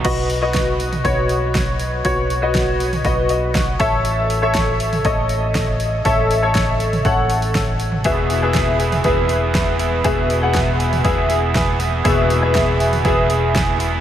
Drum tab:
CC |x---------------|----------------|----------------|----------------|
HH |o-o-o-ooo-o-o-o-|o-o-o-ooo-o-o-o-|o-o-o-ooo-o-o-o-|o-o-o-ooo-ooo-o-|
SD |----o-------o---|----o-------o---|----o-------o---|----o-------o---|
FT |-------o--------|-------o--------|-------o--------|-------o-------o|
BD |o---o---o---o---|o---o---o---o-o-|----o---o---o---|o---o---o---o---|

CC |----------------|----------------|----------------|
HH |o-o-o-ooo-o-o-o-|o-o-o-ooo-o-o-o-|o-o-o-ooo-o-o-o-|
SD |----o-------o---|----o-------o---|----o-------o---|
FT |-------o--------|-------o--------|-------o--------|
BD |o---o---o---o---|o---o---o---o---|o---o---o---o---|